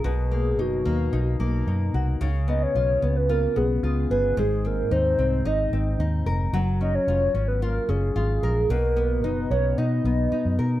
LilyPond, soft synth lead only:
\new Staff \with { instrumentName = "Soft synth lead" } { \time 4/4 \key cis \mixolydian \tempo 4 = 111 gis'4 fis'2 r4 | r8 dis''16 cis''4 b'16 ais'8 gis'8 gis'8 b'8 | gis'8 ais'8 bis'4 dis''4 r4 | r8 dis''16 cis''4 b'16 ais'8 gis'8 gis'4 |
ais'4 b'8 cis''8 dis''4. r8 | }